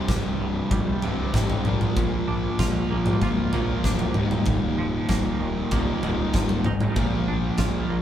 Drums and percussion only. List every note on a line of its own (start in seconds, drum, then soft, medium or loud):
0.08 kick loud
0.08 snare medium
0.08 floor tom medium
0.71 kick loud
0.71 floor tom medium
1.02 floor tom medium
1.34 kick loud
1.34 snare medium
1.34 mid tom medium
1.50 floor tom medium
1.65 mid tom medium
1.81 mid tom medium
1.96 kick loud
1.96 floor tom medium
2.59 kick medium
2.59 snare medium
2.59 floor tom medium
3.06 mid tom medium
3.21 kick medium
3.21 floor tom medium
3.53 floor tom medium
3.84 kick medium
3.84 snare medium
3.99 floor tom medium
4.14 mid tom medium
4.31 mid tom medium
4.46 kick loud
4.46 floor tom medium
5.09 kick medium
5.09 snare medium
5.09 floor tom medium
5.71 kick loud
5.71 floor tom medium
6.03 floor tom medium
6.34 kick loud
6.34 snare medium
6.34 mid tom medium
6.49 floor tom medium
6.64 mid tom medium
6.80 mid tom medium
6.96 kick loud
6.96 floor tom medium
7.58 kick medium
7.58 snare medium
7.58 floor tom medium